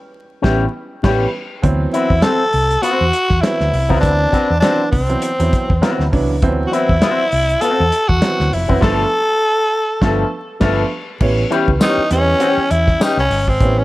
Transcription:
0.42 A1 E3 G3 B3 C#4 E4 G4 B4, kick, snare
1.03 A1 E3 G3 B3 C#4 G4 B4, kick, snare, crash
1.62 D2 E3 F#3 B3 C4, kick, closed hi-hat
1.94 C4 E4 F#4 B4, closed hi-hat
2.10 E2, kick
2.22 C4 F#4 A4 C5, snare, closed hi-hat
2.53 C2, open hi-hat
2.70 closed hi-hat
2.82 C4 F#4 C5, closed hi-hat
3.01 E2
3.13 closed hi-hat
3.30 E2, kick, snare
3.40 E3 F#3 B3 C4 E4, snare, closed hi-hat
3.60 D2, snare
3.74 C2, open hi-hat
3.88 C#2 E3 F#3 B3 C4 F#4 B4, kick
4.00 D2 D4, kick, closed hi-hat
4.32 C4 F#4 B4, kick, closed hi-hat
4.50 E2
4.60 E3 F#3 B3 C4 D4 F#4 C5, snare, closed hi-hat
4.91 C2 C4, kick, open hi-hat
5.09 E3 F#3 B3 C4, closed hi-hat
5.22 closed hi-hat
5.39 E2 E3 F#3 B3 C4, closed hi-hat
5.53 kick, closed hi-hat
5.70 E2, kick
5.82 E3 F#3 B3 C4 F#4 B4, snare, closed hi-hat
5.99 D2, snare
6.12 C2 E3 F#3 B3 D4, kick, open hi-hat
6.29 C#2
6.42 D2 E3 F3 B3 C4, kick, closed hi-hat
6.49 F#3
6.67 F#4
6.72 C4 E4 F#4 B4, closed hi-hat
6.89 E2, kick
7.02 C4 F#4 C5, snare, closed hi-hat
7.32 C2, open hi-hat
7.49 closed hi-hat
7.61 C4 F#4 A4 C5, closed hi-hat
7.80 E2
7.92 closed hi-hat
8.08 E2 F#4, kick
8.22 E3 F#3 B3 C4, snare, closed hi-hat
8.40 D2, snare
8.53 F1 E4, open hi-hat
8.68 F#1 E3 F#3 B3 C4 F#4 B4, kick
8.81 G1 F3 A3 B3 D4 F4 A4 B4, kick, snare, crash
10.01 G1 F3 A3 B3 D4 F4 A4, kick, snare
10.60 G1 F3 A3 B3 D4 F4 A4 B4, kick, snare, crash
11.20 A1 E3 G3 B3 C#4, kick, crash
11.50 E3 G3 B3 C#4 E4 G4 B4, closed hi-hat
11.68 C#2, kick
11.80 E3 G3 B3 C#4 D#4 E4 G4 C#5, snare, closed hi-hat, tambourine
11.98 muted fingered electric bass stroke
12.10 E2 E3 G3 B3 C4 C#4, closed hi-hat
12.17 C#4
12.39 C#4 G4 C#5, closed hi-hat
12.57 muted fingered electric bass stroke
12.71 E2 E4, closed hi-hat
12.88 kick, snare
13.00 C#4 D#4 G4 B4, snare, closed hi-hat, tambourine
13.17 C2 C#4, snare
13.30 G1, open hi-hat
13.48 G#1 C4, kick
13.60 A1 E3 G3 B3 C#4, kick, closed hi-hat
13.79 C#4

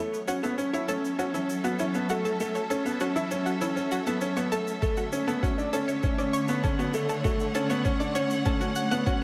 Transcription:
Already playing: F#3 A3 B3 C#5
0.14 shaker
0.20 C#4
0.27 C#4 F#4, shaker
0.43 B3 A4 E5, shaker
0.58 C#4, shaker
0.67 A4
0.73 E4 C#5, shaker
0.88 C#4 A4, shaker
1.05 shaker
1.18 C#4 F#4, shaker
1.34 C#4 E4, shaker
1.50 shaker
1.64 B3 F#4, shaker
1.79 C#4 E4, shaker
1.94 B3, shaker
2.09 A3 F#4, shaker
2.25 A4, shaker
2.40 A3, shaker
2.55 C#5, shaker
2.70 C#4 A4, shaker
2.85 B3, shaker
3.00 C#4 F#4, shaker
3.16 E4, shaker
3.31 C#4, shaker
3.46 F#4, shaker
3.61 C#4 E4, shaker
3.76 C#4, shaker
3.91 F#4, shaker
4.06 B3 A4, shaker
4.21 C#4, shaker
4.37 B3 C#5, shaker
4.52 A3 A4, shaker
4.68 shaker
4.82 D3 A3 A4, kick, shaker
4.97 F#4, shaker
5.12 A3 C#4, shaker
5.27 B3 A4, shaker
5.43 C#4 F#4, kick, shaker
5.58 D4, shaker
5.73 C#4 A4, shaker
5.82 C#5
5.88 C#5, shaker
6.03 C#4, kick, shaker
6.18 C#4 D5, shaker
6.33 C#5, shaker
6.48 B3, shaker
6.62 C#4 A4 F#5, kick, shaker
6.79 B3 F#4, shaker
6.94 A3, shaker
7.09 A4, shaker
7.24 A3 F#4, kick, shaker
7.40 shaker
7.55 C#4 A4, shaker
7.70 B3 C#5, shaker
7.85 C#4, kick, shaker
8.00 D4 D5, shaker
8.15 C#4 C#5, shaker
8.30 shaker
8.45 C#4 A4, kick, shaker
8.60 C#4 F#4, shaker
8.76 F#5, shaker
8.91 B3 F#5, shaker
9.06 C#4 F#4, kick, shaker

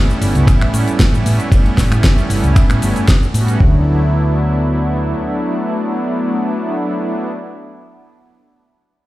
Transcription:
Already playing: G3 A3 B3 C#4 E4
0.10 shaker
0.21 G1, open hi-hat, shaker
0.35 C#2, closed hi-hat, shaker
0.47 A1, finger snap, kick, closed hi-hat, ride, shaker
0.61 finger snap, closed hi-hat
0.74 A2, open hi-hat, shaker
0.88 closed hi-hat, shaker
0.99 G3 A3 B3 C#4 E4, kick, snare, closed hi-hat, ride, shaker
1.13 A1, shaker
1.26 A2, open hi-hat, shaker
1.40 closed hi-hat, shaker
1.51 G3 A3 B3 C#4 E4, kick, closed hi-hat, ride, shaker
1.66 closed hi-hat
1.78 A1, kick, snare, open hi-hat, shaker
1.91 A2, finger snap, closed hi-hat, shaker
2.04 kick, snare, closed hi-hat, ride, shaker
2.18 closed hi-hat, shaker
2.30 G1, open hi-hat, shaker
2.44 C#2, closed hi-hat, shaker
2.56 finger snap, kick, closed hi-hat, ride, shaker
2.70 A2, finger snap, closed hi-hat, shaker
2.82 G1, open hi-hat, shaker
2.96 closed hi-hat, shaker
3.08 kick, snare, closed hi-hat, ride, shaker
3.23 shaker
3.34 A2 G3 A3 B3 C#4 F#4, open hi-hat, shaker
3.48 closed hi-hat, shaker
3.59 D2 F#3 A3 B3 D4 E4, kick

